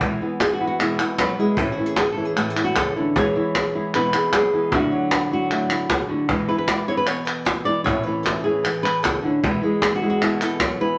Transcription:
0.01 E2 B2 E3 G#3 B3 E4, cajon bass
0.21 E3 G#3 B3 E4
0.40 G#4, muted nylon-string guitar stroke, cajon slap, clap
0.53 F#4
0.59 E3 G#3 B3 E4, cajon slap
0.67 F#4
0.79 E2 B2 E3 G#3 B3 E4 G#4, clap
0.99 E3 G#3 B3 E4 A4, clap
1.18 F#3 B4, muted nylon-string guitar stroke, cajon slap, clap
1.39 E3 G#3 B3 E4 G#4
1.57 A2 E3 A3 C#4 E4 A4, cajon bass
1.72 F#4
1.78 E3 A3 C#4 E4, cajon slap
1.86 G#4
1.96 G#4, muted nylon-string guitar stroke, cajon slap, clap
2.12 A4
2.16 E3 A3 C#4 E4, cajon slap
2.25 G#4
2.36 A2 E3 A3 C#4 E4 F#4, clap
2.50 G#4
2.56 A3 C#4 E4, cajon slap, clap
2.64 F#4
2.76 C#3 A4, muted nylon-string guitar stroke, cajon bass, cajon slap, clap
2.96 D3 A3 C#4 E4
3.16 E2 B2 E3 G#3 B3 E4 G#4 C#5, cajon bass
3.35 E3 G#3 B3 E4
3.55 G#4, muted nylon-string guitar stroke, cajon slap, clap
3.75 E3 G#3 B3 E4, cajon slap
3.94 E2 B2 E3 G#3 B3 E4 B4, clap
4.13 E3 G#3 B3 E4 G#4, cajon slap, clap
4.33 F#3 G#4, muted nylon-string guitar stroke, cajon slap, clap
4.53 E3 G#3 B3 E4
4.72 D3 F#3 A3 E4 F#4, cajon bass
4.91 F#3 A3 E4 F#4, cajon slap
5.11 E4, muted nylon-string guitar stroke, cajon slap, clap
5.31 F#3 A3 E4 F#4, cajon slap
5.51 A2 D3 F#3 A3 E4 F#4, clap
5.70 A3 E4 F#4, cajon slap, clap
5.90 C#3, muted nylon-string guitar stroke, cajon bass, cajon slap, clap
6.09 D3 A3 E4 F#4
6.29 E2 B2 E3 G#3 B3 E4, cajon bass
6.48 E3 G#3 B3 E4 B4, cajon slap
6.58 B4
6.68 E3 G#3 B3 E4 D5, cajon slap, clap
6.88 E3 G#3 B3 E4 C#5, cajon slap
6.97 B4
7.07 B2 C#5, muted nylon-string guitar stroke, clap
7.25 B4, clap
7.45 C#5, cajon slap, clap
7.65 E3 G#3 B3 E4 D5
7.84 A2 E3 A3 C#4 E4 C#5, cajon bass
8.03 E3 C#4 E4 B4, cajon slap
8.08 A3
8.23 E3 A3 A4, cajon slap, clap
8.27 C#4 E4
8.44 E3 A3 C#4 E4 G#4
8.63 E3 A4, muted nylon-string guitar stroke, clap
8.83 B4, cajon slap, clap
9.03 C#3 A4, cajon bass, cajon slap, clap
9.23 D3 A3 C#4 E4
9.43 E2 B2 E3 G#3 B3 E4, cajon bass
9.62 E3 G#3 B3 E4
9.82 G#4, muted nylon-string guitar stroke, cajon slap, clap
9.96 F#4
10.01 E3 G#3 B3 E4, cajon slap
10.10 F#4
10.21 E2 B2 E3 G#3 B3 E4 G#4, clap
10.41 E3 G#3 B3 E4 A4, cajon slap, clap
10.60 F#3, muted nylon-string guitar stroke, cajon bass, cajon slap, clap
10.80 E3 G#3 B3 E4 B4

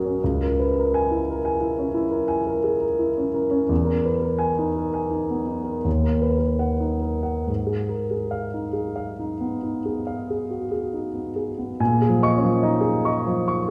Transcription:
Already playing: B1 C#4 F#4 G#4 A#4 D#5 C#6 F#6 A#6 D#7
0.05 C#4
0.24 C#2
0.43 A#4
0.60 B4
0.78 A#4
0.94 G#5
1.11 E4
1.30 A#4
1.45 G#5
1.61 E4
1.79 C#4
1.94 E4
2.11 A#4
2.28 G#5
2.47 A#4
2.64 G#4
2.80 A#4
2.99 E4
3.17 C#4
3.34 A#4
3.51 C#4
3.69 E2
3.85 A#4
4.05 B4
4.21 A#4
4.38 G#5
4.59 D#4
4.76 A#4
4.94 G#5
5.11 D#4
5.30 B3
5.47 D#4
5.64 A#4
5.84 D#2
6.04 A#4
6.22 B4
6.39 A#4
6.59 F#5
6.80 D#4
7.02 A#4
7.23 F#5
7.47 G#2
7.67 G#4
7.89 A#4
8.11 G#4
8.31 F5
8.54 D#4
8.73 G#4
8.96 F5
9.19 D#4
9.41 B3
9.63 D#4
9.86 G#4
10.07 F5
10.30 G#4
10.50 F#4
10.72 G#4
10.94 D#4
11.14 B3
11.36 G#4
11.58 B3
11.80 A#2 G#5
12.02 G#4
12.09 F3
12.23 D#5 C#6
12.37 C#4
12.44 F3
12.63 D#4 D#5
12.81 G#4
13.05 D#5 C#6
13.27 F3
13.48 C#6

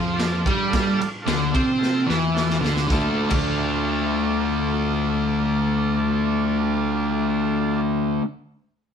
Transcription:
Already playing: F2 F3
0.13 F4 A4 D5
0.20 snare, ride
0.46 G2 G3, kick, ride
0.68 F4 A4 D5
0.73 kick, snare, ride
1.00 muted distorted electric guitar stroke, muted picked electric bass stroke, ride
1.22 F4 A4 D5
1.26 D2 D3, snare, ride
1.51 C3 C4 F4 A4 D5
1.55 kick, ride
1.77 F4 A4 C5
1.83 snare
2.06 E2 E3, snare
2.34 F4 A4 D5, snare
2.50 snare
2.61 D2 D3, snare
2.77 snare
2.88 D2 D3 A3, kick, snare
2.92 D4 F4 A4 D5
3.30 D2 D3 A3, kick, crash
3.34 D4

